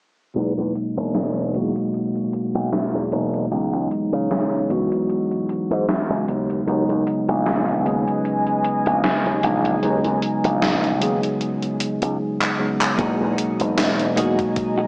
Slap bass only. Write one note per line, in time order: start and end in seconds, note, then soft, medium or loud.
0.36 0.53 E2 medium
0.58 0.72 E2 medium
0.97 1.56 E1 medium
1.54 1.72 E2 medium
2.55 2.69 B1 medium
2.94 3.09 E2 medium
3.12 3.45 E1 medium
3.51 3.69 C#2 medium
3.73 3.87 C#2 medium
4.12 4.71 C#3 medium
4.70 4.87 C#2 medium
5.71 5.85 G#2 medium
6.10 6.24 C#2 medium
6.28 6.61 D#2 medium
6.67 6.85 D#2 loud
6.89 7.03 D#2 medium
7.28 7.85 A#1 loud
7.85 8.03 D#2 medium
8.86 9.01 A#1 medium
9.26 9.40 D#2 medium
9.43 9.76 A#1 medium
9.83 10.01 D#2 medium
10.05 10.19 D#2 medium
10.44 11.01 A#1 medium
11.01 11.19 D#2 medium
12.02 12.17 C#2 loud
12.98 13.16 E2 loud
13.20 13.35 E2 medium
13.60 14.19 E1 loud
14.17 14.35 E2 medium